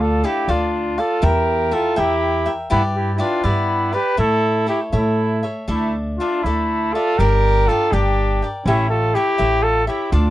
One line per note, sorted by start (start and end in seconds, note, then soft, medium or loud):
0.00 0.22 D2 medium
0.00 0.22 D4 medium
0.00 0.26 F4 medium
0.00 0.23 A4 medium
0.00 0.26 A4 medium
0.00 0.23 D5 medium
0.00 0.24 F5 medium
0.24 0.48 D4 medium
0.24 0.51 E4 medium
0.24 0.52 G4 medium
0.24 0.48 A4 medium
0.24 0.47 D5 medium
0.24 0.47 F5 medium
0.48 0.97 D2 medium
0.48 0.99 D4 medium
0.48 1.00 D4 medium
0.48 1.00 F4 medium
0.48 0.98 A4 medium
0.48 0.97 D5 medium
0.48 0.97 F5 medium
0.98 1.25 F4 medium
0.98 1.25 A4 medium
0.98 1.22 A4 soft
0.98 1.22 D5 soft
0.98 1.23 F5 soft
1.22 1.71 E2 loud
1.22 1.71 E4 medium
1.22 1.76 G4 medium
1.22 1.70 A#4 medium
1.22 1.75 A#4 medium
1.22 1.71 E5 medium
1.22 1.72 G5 medium
1.71 1.96 E4 medium
1.71 1.99 F4 medium
1.71 2.00 A4 medium
1.71 1.96 A#4 medium
1.71 1.95 E5 medium
1.71 1.95 G5 medium
1.96 2.46 E2 medium
1.96 2.50 E4 medium
1.96 2.53 E4 medium
1.96 2.54 G4 medium
1.96 2.45 A#4 medium
1.96 2.45 E5 medium
1.96 2.44 G5 medium
2.46 2.70 A#4 soft
2.46 2.70 E5 soft
2.46 2.70 G5 soft
2.70 3.19 G2 medium
2.70 2.83 B3 medium
2.70 3.18 E4 medium
2.70 2.82 E4 medium
2.70 3.18 G4 medium
2.70 3.19 B4 medium
2.70 3.18 D5 medium
2.96 3.14 E4 medium
2.96 3.14 G4 medium
3.14 3.21 E4 medium
3.14 3.22 G4 medium
3.18 3.46 D4 medium
3.18 3.44 E4 medium
3.18 3.46 F4 medium
3.18 3.44 G4 medium
3.18 3.42 B4 medium
3.18 3.42 D5 medium
3.44 3.92 G2 medium
3.44 3.96 B3 medium
3.44 3.95 E4 medium
3.44 3.96 E4 soft
3.44 3.93 G4 medium
3.44 3.92 B4 medium
3.44 3.91 D5 medium
3.93 4.18 G4 medium
3.93 4.17 G4 soft
3.93 4.18 B4 medium
3.93 4.18 B4 soft
3.93 4.18 D5 soft
4.17 4.67 A2 medium
4.17 4.66 E4 medium
4.17 4.65 E4 medium
4.17 4.67 A4 medium
4.17 4.65 A4 medium
4.17 4.67 C#5 medium
4.17 4.69 E5 medium
4.67 4.92 E4 soft
4.67 4.80 E4 medium
4.67 4.80 G4 medium
4.67 4.92 A4 medium
4.67 4.92 C#5 soft
4.67 4.91 E5 soft
4.92 5.42 A2 medium
4.92 5.44 E4 medium
4.92 5.47 E4 medium
4.92 5.46 A4 medium
4.92 5.44 A4 medium
4.92 5.43 C#5 medium
4.92 5.42 E5 medium
5.43 5.67 A4 soft
5.43 5.69 C#5 soft
5.43 5.67 E5 soft
5.68 6.17 D2 medium
5.68 5.94 A3 medium
5.68 6.20 D4 medium
5.68 5.93 E4 medium
5.68 6.19 A4 medium
5.68 6.21 D5 medium
5.68 6.19 E5 medium
6.18 6.45 D4 soft
6.18 6.46 D4 medium
6.18 6.44 F4 medium
6.18 6.45 A4 soft
6.18 6.45 D5 soft
6.18 6.45 E5 medium
6.43 6.93 D2 medium
6.43 6.95 A3 medium
6.43 6.95 E4 medium
6.43 6.95 A4 medium
6.43 6.94 D5 medium
6.43 6.94 E5 medium
6.47 6.96 D4 medium
6.93 7.20 F4 medium
6.93 7.20 A4 loud
6.93 7.20 A4 soft
6.93 7.19 D5 soft
6.93 7.19 E5 soft
7.18 7.67 G1 medium
7.18 7.67 D4 medium
7.18 7.69 G4 medium
7.18 7.69 A#4 loud
7.18 7.68 A#4 medium
7.18 7.69 D5 medium
7.18 7.70 G5 medium
7.67 7.92 D4 medium
7.67 7.93 F4 medium
7.67 7.94 A4 loud
7.67 7.92 A#4 medium
7.67 7.92 D5 medium
7.67 7.92 G5 medium
7.92 8.40 G1 medium
7.92 8.48 D4 medium
7.92 8.42 D4 medium
7.92 8.48 G4 medium
7.92 8.42 A#4 soft
7.92 8.42 D5 medium
7.92 8.41 G5 medium
8.42 8.67 A#4 soft
8.42 8.67 D5 soft
8.42 8.66 G5 soft
8.65 9.13 A1 loud
8.65 8.88 C#4 medium
8.65 8.89 E4 medium
8.65 9.14 G4 medium
8.65 9.16 A4 medium
8.65 9.15 C#5 medium
8.65 9.15 E5 medium
8.90 9.15 F4 medium
8.90 9.16 A4 medium
9.14 9.63 E4 medium
9.14 9.64 G4 loud
9.14 9.38 G4 soft
9.14 9.38 A4 medium
9.14 9.38 C#5 medium
9.14 9.37 E5 medium
9.38 9.87 A1 medium
9.38 9.88 G4 medium
9.38 9.90 A4 medium
9.38 9.88 C#5 medium
9.38 9.86 E5 medium
9.62 9.86 F4 medium
9.62 9.87 A4 loud
9.87 10.11 E4 medium
9.87 10.11 G4 medium
9.87 10.11 A4 soft
9.87 10.13 C#5 soft
9.87 10.12 E5 medium
10.12 10.30 D2 loud
10.12 10.30 D4 medium
10.12 10.30 F4 medium
10.12 10.30 A4 medium
10.12 10.30 D5 medium
10.12 10.30 F5 medium